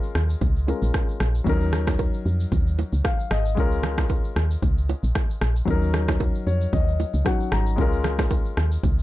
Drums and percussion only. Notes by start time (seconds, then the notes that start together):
0.03 shaker
0.15 cross-stick, shaker
0.30 shaker
0.41 kick, low conga, shaker
0.56 shaker
0.68 low bongo, shaker
0.82 shaker
0.94 kick, cross-stick, high bongo, shaker
1.09 shaker
1.20 cross-stick, shaker
1.35 shaker
1.47 kick, low conga, shaker
1.61 shaker
1.73 cross-stick, low conga, shaker
1.87 kick, cross-stick, low bongo, shaker
1.99 kick, high bongo, shaker
2.13 shaker
2.26 shaker
2.40 shaker
2.52 kick, low conga, shaker
2.67 shaker
2.78 low bongo, shaker
2.93 shaker
3.05 kick, cross-stick, high bongo, shaker
3.19 shaker
3.31 cross-stick, shaker
3.46 shaker
3.57 kick, low conga, shaker
3.71 shaker
3.83 cross-stick, low conga, shaker
3.98 kick, cross-stick, low bongo, shaker
4.09 kick, high bongo, shaker
4.24 shaker
4.36 cross-stick, shaker
4.51 shaker
4.62 kick, low conga, shaker
4.77 shaker
4.89 low bongo, shaker
5.03 shaker
5.15 kick, cross-stick, high bongo, shaker
5.30 shaker
5.41 cross-stick, shaker
5.56 shaker
5.68 kick, low conga, shaker
5.82 shaker
5.94 cross-stick, low conga, shaker
6.08 kick, cross-stick, low bongo, shaker
6.20 kick, high bongo, shaker
6.35 shaker
6.47 shaker
6.61 shaker
6.73 kick, low conga, shaker
6.88 shaker
6.99 low bongo, shaker
7.14 shaker
7.26 kick, cross-stick, high bongo, shaker
7.40 shaker
7.52 cross-stick, shaker
7.67 shaker
7.78 kick, low conga, shaker
7.92 shaker
8.04 cross-stick, low conga, shaker
8.19 kick, cross-stick, low bongo, shaker
8.30 kick, high bongo, shaker
8.45 shaker
8.57 cross-stick, shaker
8.72 shaker
8.83 kick, low conga, shaker
8.98 shaker